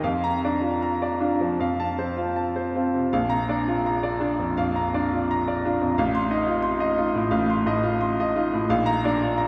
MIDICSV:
0, 0, Header, 1, 2, 480
1, 0, Start_track
1, 0, Key_signature, -2, "major"
1, 0, Tempo, 778210
1, 28, Time_signature, 4, 2, 24, 8
1, 1468, Tempo, 746269
1, 2428, Tempo, 710059
1, 3388, Tempo, 681044
1, 6337, End_track
2, 0, Start_track
2, 0, Title_t, "Grand piano"
2, 0, Program_c, 0, 0
2, 0, Control_c, 0, 64, 127
2, 21, Note_on_c, 0, 41, 55
2, 22, Note_on_c, 0, 77, 55
2, 41, Control_c, 0, 64, 0
2, 146, Note_on_c, 0, 82, 59
2, 163, Control_c, 0, 64, 127
2, 216, Note_off_c, 0, 77, 0
2, 275, Note_on_c, 0, 74, 40
2, 276, Note_on_c, 0, 62, 40
2, 338, Note_off_c, 0, 82, 0
2, 379, Note_on_c, 0, 65, 40
2, 464, Note_off_c, 0, 74, 0
2, 509, Note_on_c, 0, 82, 43
2, 577, Note_off_c, 0, 65, 0
2, 629, Note_on_c, 0, 74, 42
2, 659, Note_off_c, 0, 62, 0
2, 704, Note_off_c, 0, 82, 0
2, 743, Note_on_c, 0, 62, 40
2, 743, Note_on_c, 0, 65, 41
2, 825, Note_off_c, 0, 74, 0
2, 869, Note_on_c, 0, 53, 40
2, 941, Note_off_c, 0, 65, 0
2, 966, Note_off_c, 0, 41, 0
2, 983, Note_on_c, 0, 41, 50
2, 989, Note_off_c, 0, 62, 0
2, 989, Note_on_c, 0, 77, 44
2, 992, Note_off_c, 0, 53, 0
2, 1005, Control_c, 0, 64, 0
2, 1108, Note_on_c, 0, 81, 56
2, 1111, Control_c, 0, 64, 127
2, 1182, Note_off_c, 0, 77, 0
2, 1225, Note_on_c, 0, 72, 42
2, 1227, Note_on_c, 0, 60, 38
2, 1300, Note_off_c, 0, 81, 0
2, 1336, Note_on_c, 0, 65, 42
2, 1417, Note_off_c, 0, 72, 0
2, 1457, Note_on_c, 0, 81, 40
2, 1536, Note_off_c, 0, 65, 0
2, 1582, Note_on_c, 0, 72, 38
2, 1615, Note_off_c, 0, 60, 0
2, 1661, Note_off_c, 0, 81, 0
2, 1711, Note_on_c, 0, 65, 40
2, 1713, Note_on_c, 0, 60, 34
2, 1786, Note_off_c, 0, 72, 0
2, 1828, Note_on_c, 0, 48, 32
2, 1910, Note_off_c, 0, 65, 0
2, 1929, Note_off_c, 0, 41, 0
2, 1949, Note_on_c, 0, 77, 54
2, 1952, Note_on_c, 0, 34, 54
2, 1954, Note_off_c, 0, 48, 0
2, 1958, Note_off_c, 0, 60, 0
2, 1970, Control_c, 0, 64, 0
2, 2057, Note_on_c, 0, 82, 58
2, 2092, Control_c, 0, 64, 127
2, 2144, Note_off_c, 0, 77, 0
2, 2183, Note_on_c, 0, 74, 44
2, 2184, Note_on_c, 0, 62, 40
2, 2256, Note_off_c, 0, 82, 0
2, 2303, Note_on_c, 0, 65, 45
2, 2377, Note_off_c, 0, 74, 0
2, 2421, Note_on_c, 0, 82, 47
2, 2496, Note_off_c, 0, 65, 0
2, 2536, Note_on_c, 0, 74, 47
2, 2567, Note_off_c, 0, 62, 0
2, 2617, Note_off_c, 0, 82, 0
2, 2649, Note_on_c, 0, 62, 44
2, 2649, Note_on_c, 0, 65, 43
2, 2734, Note_off_c, 0, 74, 0
2, 2779, Note_on_c, 0, 41, 38
2, 2851, Note_off_c, 0, 65, 0
2, 2879, Note_off_c, 0, 34, 0
2, 2893, Note_off_c, 0, 41, 0
2, 2902, Note_on_c, 0, 77, 51
2, 2903, Note_on_c, 0, 41, 44
2, 3027, Note_on_c, 0, 82, 47
2, 3045, Note_off_c, 0, 62, 0
2, 3099, Note_off_c, 0, 77, 0
2, 3152, Note_on_c, 0, 74, 45
2, 3153, Note_on_c, 0, 62, 43
2, 3221, Note_off_c, 0, 82, 0
2, 3277, Note_on_c, 0, 65, 44
2, 3291, Note_off_c, 0, 41, 0
2, 3343, Note_off_c, 0, 74, 0
2, 3399, Note_on_c, 0, 82, 50
2, 3466, Note_off_c, 0, 65, 0
2, 3518, Note_on_c, 0, 74, 40
2, 3536, Note_off_c, 0, 62, 0
2, 3588, Note_off_c, 0, 82, 0
2, 3640, Note_on_c, 0, 62, 41
2, 3644, Note_on_c, 0, 65, 46
2, 3705, Note_off_c, 0, 74, 0
2, 3756, Note_on_c, 0, 41, 42
2, 3826, Note_off_c, 0, 65, 0
2, 3870, Note_off_c, 0, 41, 0
2, 3871, Note_off_c, 0, 62, 0
2, 3873, Note_on_c, 0, 77, 57
2, 3876, Note_on_c, 0, 33, 58
2, 3879, Control_c, 0, 64, 0
2, 3990, Note_on_c, 0, 84, 58
2, 4003, Control_c, 0, 64, 127
2, 4057, Note_off_c, 0, 77, 0
2, 4103, Note_on_c, 0, 63, 40
2, 4104, Note_on_c, 0, 75, 43
2, 4175, Note_off_c, 0, 84, 0
2, 4220, Note_on_c, 0, 65, 43
2, 4291, Note_off_c, 0, 75, 0
2, 4326, Note_on_c, 0, 84, 54
2, 4409, Note_off_c, 0, 65, 0
2, 4452, Note_on_c, 0, 75, 48
2, 4480, Note_off_c, 0, 63, 0
2, 4522, Note_off_c, 0, 84, 0
2, 4576, Note_on_c, 0, 65, 50
2, 4580, Note_on_c, 0, 63, 42
2, 4645, Note_off_c, 0, 75, 0
2, 4696, Note_on_c, 0, 45, 45
2, 4767, Note_off_c, 0, 65, 0
2, 4791, Note_off_c, 0, 33, 0
2, 4809, Note_on_c, 0, 77, 54
2, 4812, Note_on_c, 0, 33, 55
2, 4886, Note_off_c, 0, 45, 0
2, 4943, Note_on_c, 0, 84, 49
2, 4960, Note_off_c, 0, 63, 0
2, 5003, Note_off_c, 0, 77, 0
2, 5057, Note_on_c, 0, 45, 47
2, 5062, Note_on_c, 0, 75, 50
2, 5130, Note_off_c, 0, 84, 0
2, 5179, Note_on_c, 0, 65, 50
2, 5251, Note_off_c, 0, 75, 0
2, 5302, Note_on_c, 0, 84, 51
2, 5371, Note_off_c, 0, 65, 0
2, 5436, Note_on_c, 0, 75, 50
2, 5444, Note_off_c, 0, 45, 0
2, 5494, Note_off_c, 0, 84, 0
2, 5551, Note_on_c, 0, 65, 54
2, 5553, Note_on_c, 0, 63, 44
2, 5624, Note_off_c, 0, 75, 0
2, 5674, Note_on_c, 0, 45, 51
2, 5743, Note_off_c, 0, 65, 0
2, 5757, Note_off_c, 0, 33, 0
2, 5788, Note_on_c, 0, 34, 62
2, 5789, Note_on_c, 0, 77, 65
2, 5791, Note_off_c, 0, 45, 0
2, 5792, Note_off_c, 0, 63, 0
2, 5797, Control_c, 0, 64, 0
2, 5899, Control_c, 0, 64, 127
2, 5902, Note_on_c, 0, 82, 72
2, 5980, Note_off_c, 0, 77, 0
2, 6032, Note_on_c, 0, 62, 47
2, 6038, Note_on_c, 0, 74, 48
2, 6096, Note_off_c, 0, 82, 0
2, 6151, Note_on_c, 0, 65, 47
2, 6223, Note_off_c, 0, 74, 0
2, 6267, Note_on_c, 0, 82, 54
2, 6337, Note_off_c, 0, 34, 0
2, 6337, Note_off_c, 0, 62, 0
2, 6337, Note_off_c, 0, 65, 0
2, 6337, Note_off_c, 0, 82, 0
2, 6337, End_track
0, 0, End_of_file